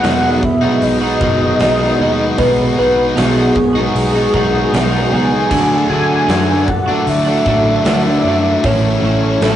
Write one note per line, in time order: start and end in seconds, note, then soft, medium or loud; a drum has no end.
0.00 0.65 E2 medium
0.00 1.59 B2 medium
0.00 0.42 D#3 loud
0.00 0.24 F#3 loud
0.00 0.25 G#3 loud
0.00 0.23 D#4 loud
0.00 5.46 G#4 medium
0.00 0.45 F#5 loud
0.00 8.59 F#5 medium
0.00 2.35 B5 medium
0.00 5.47 D#6 medium
0.00 open hi-hat medium
0.04 0.22 B3 loud
0.04 0.21 F#4 loud
0.04 snare loud
0.22 0.42 F#3 medium
0.22 0.43 G#3 medium
0.22 0.42 B3 medium
0.22 0.43 D#4 medium
0.22 0.43 F#4 medium
0.42 0.85 E5 loud
0.42 muted overdriven electric guitar stroke soft
0.42 muted clean electric guitar stroke soft
0.42 kick medium
0.62 1.04 F#3 medium
0.62 1.03 G#3 medium
0.62 1.02 B3 medium
0.62 1.02 D#4 medium
0.62 1.01 F#4 medium
0.82 1.13 B1 medium
0.82 2.40 D#5 loud
0.82 open hi-hat medium
1.01 1.21 F#3 medium
1.01 1.21 G#3 medium
1.01 1.22 B3 medium
1.01 1.22 D#4 medium
1.01 1.23 F#4 medium
1.20 1.52 F#1 medium
1.20 1.58 B2 medium
1.20 1.60 D#3 medium
1.20 1.61 F#3 medium
1.20 1.43 G#3 medium
1.20 1.60 B3 medium
1.20 1.42 D#4 medium
1.20 1.41 F#4 medium
1.20 kick loud
1.41 1.60 G#3 medium
1.41 1.60 D#4 medium
1.41 1.62 F#4 medium
1.59 1.91 B1 medium
1.59 2.18 B2 medium
1.59 1.98 D#3 medium
1.59 1.83 F#3 medium
1.59 1.81 G#3 medium
1.59 1.82 B3 loud
1.59 1.80 D#4 loud
1.59 1.79 F#4 medium
1.59 snare loud
1.59 open hi-hat medium
1.79 1.99 G#3 medium
1.79 2.01 B3 medium
1.79 2.01 D#4 medium
1.79 2.02 F#4 medium
1.84 2.01 F#3 medium
1.99 2.31 D#2 medium
1.99 2.37 B2 medium
1.99 2.37 D#3 medium
1.99 2.39 F#3 medium
1.99 2.37 G#3 medium
1.99 2.39 B3 medium
1.99 2.38 D#4 medium
1.99 2.40 F#4 medium
2.37 2.69 B1 medium
2.37 3.14 B2 medium
2.37 2.75 D#3 medium
2.37 2.79 F#3 loud
2.37 2.76 G#3 loud
2.37 2.80 B3 loud
2.37 2.78 D#4 loud
2.37 2.79 F#4 loud
2.37 2.77 B4 loud
2.37 5.48 C#6 medium
2.37 kick loud
2.37 open hi-hat medium
2.77 3.09 B1 medium
2.77 3.15 B2 medium
2.77 3.15 D#3 medium
2.77 3.17 F#3 medium
2.77 3.15 G#3 medium
2.77 3.17 D#4 medium
2.77 3.17 F#4 medium
2.77 3.18 B4 loud
2.81 3.18 B3 medium
3.15 3.48 B1 loud
3.15 3.74 B2 loud
3.15 3.53 D#3 loud
3.15 3.38 F#3 loud
3.15 3.37 G#3 loud
3.15 3.35 D#4 loud
3.15 3.35 F#4 loud
3.15 5.13 G#4 loud
3.15 snare loud
3.15 open hi-hat medium
3.19 3.36 B3 medium
3.35 3.57 F#3 medium
3.35 3.54 G#3 medium
3.35 3.57 B3 medium
3.35 3.54 D#4 medium
3.35 3.54 F#4 medium
3.54 3.86 B1 medium
3.54 muted clean electric guitar stroke soft
3.54 muted overdriven electric guitar stroke soft
3.54 kick medium
3.73 4.16 G#3 medium
3.73 4.14 B3 medium
3.73 4.14 D#4 medium
3.73 4.12 F#4 medium
3.78 4.15 F#3 medium
3.95 4.26 B1 medium
3.95 open hi-hat medium
4.13 4.33 F#3 medium
4.13 4.33 G#3 medium
4.13 4.35 B3 medium
4.13 4.33 D#4 medium
4.13 4.35 F#4 medium
4.33 4.64 B1 loud
4.33 4.73 B2 medium
4.33 4.72 D#3 medium
4.33 4.74 F#3 medium
4.33 4.54 G#3 medium
4.33 4.75 B3 medium
4.33 4.53 D#4 medium
4.33 4.51 F#4 medium
4.33 kick medium
4.53 4.72 G#3 medium
4.53 4.73 D#4 medium
4.53 4.74 F#4 medium
4.72 5.04 B1 medium
4.72 5.31 B2 medium
4.72 5.10 D#3 medium
4.72 4.94 F#3 loud
4.72 4.93 G#3 medium
4.72 4.92 B3 loud
4.72 4.92 D#4 loud
4.72 4.90 F#4 loud
4.72 snare loud
4.72 open hi-hat medium
4.91 5.12 F#3 medium
4.91 5.11 G#3 medium
4.91 5.12 B3 medium
4.91 5.12 D#4 medium
4.91 5.14 F#4 medium
5.11 5.43 C#2 medium
5.11 5.48 B2 medium
5.11 5.48 D#3 medium
5.11 5.49 F#3 medium
5.11 5.49 G#3 medium
5.11 5.50 B3 medium
5.11 5.49 D#4 medium
5.11 5.50 F#4 medium
5.11 5.89 G#5 loud
5.50 5.82 D2 medium
5.50 5.88 D3 loud
5.50 5.89 F#3 loud
5.50 5.89 A3 loud
5.50 5.90 D4 loud
5.50 5.91 F#4 loud
5.50 9.56 A4 medium
5.50 8.61 D5 medium
5.50 8.61 D6 medium
5.50 kick loud
5.50 crash loud
5.89 6.21 D2 medium
5.89 6.26 D3 medium
5.89 6.28 F#3 medium
5.89 6.28 A3 medium
5.89 6.28 D4 medium
5.89 6.29 F#4 medium
5.89 6.71 G#5 loud
6.27 6.90 F#2 medium
6.27 6.66 D3 loud
6.27 6.50 F#3 loud
6.27 6.50 A3 loud
6.27 6.48 D4 loud
6.27 6.46 F#4 loud
6.27 snare loud
6.27 open hi-hat medium
6.47 6.67 A3 medium
6.47 6.67 D4 medium
6.47 6.67 F#4 medium
6.51 6.68 F#3 medium
6.67 7.10 F#5 loud
6.67 muted clean electric guitar stroke medium
6.67 muted overdriven electric guitar stroke soft
6.67 kick medium
6.86 7.27 A3 medium
6.86 7.26 D4 medium
6.86 7.24 F#4 medium
6.90 7.29 F#3 medium
7.07 7.38 D2 medium
7.07 8.66 E5 loud
7.07 open hi-hat medium
7.25 7.45 A3 medium
7.25 7.46 D4 medium
7.25 7.47 F#4 medium
7.30 7.46 F#3 medium
7.45 7.77 A1 loud
7.45 7.83 D3 medium
7.45 7.84 F#3 medium
7.45 7.67 A3 medium
7.45 7.66 D4 medium
7.45 7.64 F#4 medium
7.45 kick medium
7.45 snare soft
7.65 7.84 A3 medium
7.65 7.86 D4 medium
7.65 7.86 F#4 medium
7.84 8.16 D2 medium
7.84 8.23 D3 medium
7.84 8.08 F#3 loud
7.84 8.06 A3 loud
7.84 8.05 D4 loud
7.84 8.03 F#4 loud
7.84 snare loud
7.84 open hi-hat medium
8.04 8.24 A3 medium
8.04 8.25 D4 medium
8.04 8.26 F#4 medium
8.09 8.26 F#3 medium
8.24 8.55 F#2 medium
8.24 8.61 D3 medium
8.24 8.63 F#3 medium
8.24 8.62 A3 medium
8.24 8.62 D4 medium
8.24 8.63 F#4 medium
8.63 8.95 A1 medium
8.63 9.41 A2 loud
8.63 9.01 E3 loud
8.63 9.02 A3 loud
8.63 9.03 C#4 loud
8.63 9.04 E4 loud
8.63 9.04 C#5 loud
8.63 9.56 C#5 medium
8.63 9.56 E5 medium
8.63 9.56 C#6 medium
8.63 kick loud
8.63 open hi-hat medium
9.02 9.34 A1 medium
9.02 9.42 E3 medium
9.02 9.43 A3 medium
9.02 9.44 C#4 medium
9.02 9.44 E4 medium
9.02 9.44 C#5 loud
9.41 9.56 A1 medium
9.41 9.56 A2 loud
9.41 9.56 E3 loud
9.41 9.56 A3 loud
9.41 9.56 C#4 loud
9.41 9.56 E4 loud
9.41 9.56 A4 loud
9.41 snare loud
9.41 open hi-hat medium